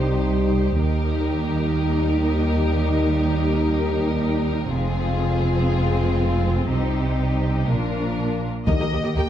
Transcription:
0.00 0.76 C2 soft
0.00 0.76 G3 soft
0.00 0.76 D#4 soft
0.00 0.79 D#4 soft
0.00 0.76 G4 soft
0.00 0.76 C5 soft
0.79 4.69 D#2 soft
0.79 4.70 D#2 soft
0.79 4.57 G3 soft
0.79 4.57 D#4 medium
0.79 4.70 D#4 soft
0.79 4.70 G4 soft
0.79 4.70 A#4 soft
4.73 6.66 F1 medium
4.73 6.66 F2 medium
4.73 6.67 G#3 medium
4.73 7.69 C4 soft
4.73 6.66 F4 medium
4.73 6.67 F4 soft
4.73 6.70 G#4 soft
6.70 7.67 C2 soft
6.70 7.67 C3 soft
6.70 7.65 G3 soft
6.70 7.65 D#4 soft
6.70 7.68 D#4 soft
6.70 7.66 G4 soft
7.68 8.47 A#1 soft
7.68 8.47 A#2 soft
7.68 8.39 F3 soft
7.68 8.46 D4 soft
7.68 8.39 D4 soft
7.68 8.47 F4 soft
7.68 8.47 A#4 soft
8.67 8.72 D#2 soft
8.67 9.29 D#3 medium
8.67 8.84 G3 soft
8.67 8.72 A#3 soft
8.67 8.84 D#4 soft
8.67 8.73 G4 soft
8.67 8.72 A#4 medium
8.67 9.13 D#5 medium
8.67 8.72 D#5 soft
8.67 taiko soft
8.80 8.85 D#2 soft
8.80 8.85 A#3 soft
8.80 8.85 G4 soft
8.80 8.85 A#4 soft
8.80 8.85 D#5 soft
8.92 8.96 D#2 soft
8.92 8.97 D#2 soft
8.92 8.97 A#3 soft
8.92 8.97 G4 soft
8.92 8.97 A#4 soft
8.92 8.98 D#5 soft
9.04 9.09 D#2 soft
9.04 9.09 A#3 soft
9.04 9.09 G4 soft
9.04 9.09 A#4 soft
9.04 9.09 D#5 soft
9.16 9.21 D#2 medium
9.16 9.22 D#2 medium
9.16 9.22 A#3 soft
9.16 9.22 G4 medium
9.16 9.21 A#4 soft
9.16 9.21 D#5 soft
9.16 9.29 G5 medium

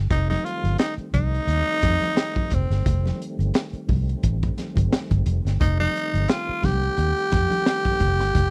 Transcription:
0.10 0.35 F1 loud
0.10 8.50 D#3 medium
0.10 8.50 G3 medium
0.10 8.50 A3 medium
0.10 8.50 C4 medium
0.10 0.29 D#4 medium
0.10 kick loud
0.10 closed hi-hat medium
0.10 muted conga soft
0.10 low conga medium
0.30 0.46 D#4 medium
0.30 snare soft
0.30 muted conga soft
0.30 high conga medium
0.45 0.78 F4 medium
0.45 closed hi-hat medium
0.64 0.75 G1 medium
0.64 closed hi-hat medium
0.64 high conga medium
0.78 0.94 D#4 medium
0.78 snare loud
0.78 closed hi-hat loud
0.98 muted fingered electric bass stroke soft
0.98 closed hi-hat soft
0.98 muted conga soft
1.13 1.39 C2 medium
1.13 2.55 D#4 loud
1.13 kick medium
1.13 closed hi-hat medium
1.13 high conga medium
1.13 low conga medium
1.34 closed hi-hat soft
1.47 1.62 D#2 medium
1.47 closed hi-hat medium
1.68 muted conga soft
1.82 1.97 F2 medium
1.82 kick loud
1.82 snare soft
1.82 closed hi-hat medium
1.82 high conga soft
2.02 closed hi-hat medium
2.02 high conga medium
2.17 snare loud
2.17 closed hi-hat medium
2.36 kick medium
2.36 high conga medium
2.50 2.66 F1 medium
2.50 3.22 C4 medium
2.50 kick medium
2.50 closed hi-hat medium
2.50 low conga medium
2.70 2.81 G1 medium
2.70 snare soft
2.70 closed hi-hat soft
2.86 3.11 F1 loud
2.86 kick loud
2.86 closed hi-hat medium
2.86 low conga medium
3.06 snare soft
3.06 high conga medium
3.22 closed hi-hat medium
3.39 3.50 G1 medium
3.39 closed hi-hat soft
3.39 high conga medium
3.54 snare loud
3.54 closed hi-hat medium
3.54 muted conga soft
3.73 muted fingered electric bass stroke medium
3.73 closed hi-hat soft
3.89 4.14 C2 medium
3.89 kick medium
3.89 open hi-hat soft
3.89 high conga medium
3.89 low conga medium
4.09 closed hi-hat medium
4.23 4.48 A1 medium
4.23 kick medium
4.23 closed hi-hat medium
4.43 kick medium
4.43 closed hi-hat soft
4.58 snare soft
4.58 closed hi-hat medium
4.58 high conga medium
4.76 4.88 G1 medium
4.76 kick medium
4.76 closed hi-hat medium
4.76 high conga medium
4.93 snare loud
4.93 closed hi-hat medium
5.11 5.22 G1 loud
5.11 kick loud
5.11 closed hi-hat soft
5.11 muted conga soft
5.11 high conga medium
5.26 5.40 F1 loud
5.26 closed hi-hat medium
5.26 low conga medium
5.45 5.56 G1 medium
5.45 snare soft
5.45 closed hi-hat soft
5.61 5.86 F1 loud
5.61 5.79 D#4 medium
5.61 kick loud
5.61 closed hi-hat medium
5.61 muted conga soft
5.61 low conga medium
5.80 6.31 D#4 loud
5.80 snare soft
5.80 high conga medium
5.96 closed hi-hat medium
6.13 6.25 G1 medium
6.13 closed hi-hat soft
6.13 high conga medium
6.28 6.66 F4 loud
6.28 snare loud
6.28 closed hi-hat medium
6.28 muted conga soft
6.49 muted fingered electric bass stroke medium
6.63 6.88 C2 medium
6.63 8.50 G4 loud
6.63 kick medium
6.63 snare soft
6.63 open hi-hat soft
6.63 high conga medium
6.63 low conga medium
6.83 closed hi-hat medium
6.97 7.12 D#2 loud
6.97 closed hi-hat medium
7.17 closed hi-hat soft
7.31 7.46 F2 loud
7.31 kick loud
7.31 snare soft
7.31 closed hi-hat medium
7.31 high conga soft
7.51 closed hi-hat medium
7.51 high conga medium
7.66 snare loud
7.66 closed hi-hat medium
7.85 kick medium
7.85 closed hi-hat soft
7.85 muted conga soft
7.85 high conga medium
7.99 8.20 F1 loud
7.99 kick medium
7.99 closed hi-hat medium
7.99 low conga medium
8.20 8.31 G1 loud
8.20 snare soft
8.20 closed hi-hat soft
8.34 8.50 F1 loud
8.34 kick medium
8.34 closed hi-hat medium
8.34 muted conga soft
8.34 low conga medium

